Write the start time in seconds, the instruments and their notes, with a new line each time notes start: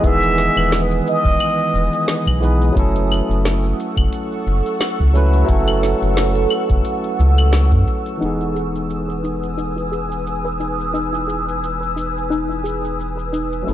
Already playing: tine electric piano B3 D#4 B4, ambient pad B4 G#5 D#6
0.00 analog synth bass E1, tine electric piano E3 G#3 B3, kick, closed hi-hat
0.05 tine electric piano D#3 G#4, muted trumpet E5, shaker
0.23 closed hi-hat, shaker
0.38 snare, shaker
0.56 analog synth bass E1, claves, shaker
0.72 snare, closed hi-hat, shaker
0.91 closed hi-hat, shaker
1.07 muted trumpet D#5, shaker
1.25 analog synth bass E1, kick, closed hi-hat, shaker
1.40 closed hi-hat, claves, shaker
1.60 shaker
1.74 analog synth bass E1, shaker
1.93 closed hi-hat, shaker
2.08 snare, closed hi-hat, shaker
2.27 analog synth bass B1, kick, claves, shaker
2.40 tine electric piano E3 G#3 B3 D#4, shaker
2.44 tine electric piano B4
2.62 closed hi-hat, shaker
2.72 tine electric piano F#3 A3, ambient pad A4 C#6 E6
2.76 analog synth bass F#1, tine electric piano C#4 E4 A4, ambient pad F#5, kick, closed hi-hat, shaker
2.96 closed hi-hat, shaker
3.12 claves, shaker
3.29 analog synth bass F#1, shaker
3.45 snare, closed hi-hat, shaker
3.64 closed hi-hat, shaker
3.80 shaker
3.97 analog synth bass F#1, kick, closed hi-hat, claves, shaker
4.13 closed hi-hat, shaker
4.32 shaker
4.47 analog synth bass F#1, shaker
4.66 closed hi-hat, shaker
4.81 snare, closed hi-hat, claves, shaker
4.99 analog synth bass C#2, kick, shaker
5.13 tine electric piano F#3 A3 C#4 E4, shaker
5.17 tine electric piano B4
5.33 closed hi-hat, shaker
5.44 tine electric piano F#3 A3 C#4
5.49 analog synth bass F#1, tine electric piano E4 A4, kick, closed hi-hat, shaker
5.68 closed hi-hat, claves, shaker
5.83 snare, shaker
6.02 analog synth bass F#1, shaker
6.17 snare, closed hi-hat, shaker
6.36 closed hi-hat, shaker
6.50 claves, shaker
6.70 analog synth bass F#1, kick, closed hi-hat, shaker
6.85 closed hi-hat, shaker
7.04 closed hi-hat, shaker
7.19 analog synth bass C#2, shaker
7.38 closed hi-hat, claves, shaker
7.53 snare, closed hi-hat, shaker
7.72 analog synth bass F#2, kick, closed hi-hat, shaker
7.87 kick, shaker
8.06 closed hi-hat, shaker
8.17 tine electric piano E3 G#3 B3, synth pluck D#4, ambient pad B4 G#5 D#6 E6
8.22 analog synth bass E1, tine electric piano D#4 G#4, shaker
8.40 synth pluck E4, shaker
8.55 synth pluck G#4, shaker
8.75 shaker
8.90 shaker
9.08 synth pluck B4, shaker
9.24 synth pluck D#4, shaker
9.43 shaker
9.58 synth pluck D#4, shaker
9.77 synth pluck E4, shaker
9.92 synth pluck G#4, shaker
10.12 shaker
10.27 shaker
10.45 synth pluck B4, shaker
10.60 synth pluck D#4, shaker
10.80 shaker
10.94 synth pluck D#4, shaker
11.13 synth pluck E4, shaker
11.28 synth pluck G#4, shaker
11.49 shaker
11.64 shaker
11.81 synth pluck B4, shaker
11.96 synth pluck D#4, shaker
12.17 shaker
12.30 synth pluck D#4, shaker
12.49 synth pluck E4, shaker
12.64 synth pluck G#4, shaker
12.85 shaker
13.00 shaker
13.17 synth pluck B4, shaker
13.33 synth pluck D#4, shaker
13.52 shaker
13.62 tine electric piano F#3 A3 C#4
13.67 analog synth bass F#1, synth pluck C#4, tine electric piano E4 A4, shaker